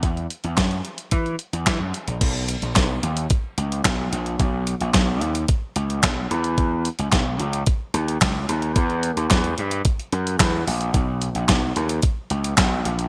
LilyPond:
<<
  \new Staff \with { instrumentName = "Slap bass" } { \clef bass \time 4/4 \key b \major \tempo 4 = 110 e,8 r16 e,16 fis,8 r8 e8 r16 e,16 e16 fis,16 r16 ais,,16 | b,,8. ais,,16 b,,8 dis,8 r8 cis,8 b,,8 ais,,8 | b,,8. ais,,16 b,,8 dis,8 r8 cis,8 b,,8 e,8~ | e,8. cis,16 b,,8 cis,8 r8 dis,8 cis,8 dis,8 |
e,8. dis,16 e,8 g,8 r8 fis,8 e,8 ais,,8 | b,,8. ais,,16 b,,8 dis,8 r8 cis,8 b,,8 ais,,8 | }
  \new DrumStaff \with { instrumentName = "Drums" } \drummode { \time 4/4 <hh bd>16 hh16 hh16 hh16 <hc hh bd sn>16 hh16 hh16 hh16 <hh bd>16 hh16 hh16 hh16 <hc hh bd sn>8 hh16 hh16 | <cymc hh bd>8 hh16 hh16 <hc hh bd sn>8 hh16 hh16 <hh bd>8 hh16 hh16 <hc hh bd sn>8 hh16 hh16 | <hh bd>8 hh16 hh16 <hc hh bd sn>8 hh16 hh16 <hh bd>8 hh16 hh16 <hc hh bd sn>8 hh16 hh16 | <hh bd>8 hh16 hh16 <hc hh bd sn>8 hh16 hh16 <hh bd>8 hh16 hh16 <hc hh bd sn>8 hh16 hh16 |
<hh bd>16 hh16 hh16 hh16 <hc hh bd sn>16 hh16 hh16 hh16 <hh bd>16 hh16 hh16 hh16 <hc hh bd sn>8 hho16 hh16 | <hh bd>8 hh16 hh16 <hc hh bd sn>8 hh16 hh16 <hh bd>8 hh16 hh16 <hc hh bd sn>8 hh16 hh16 | }
>>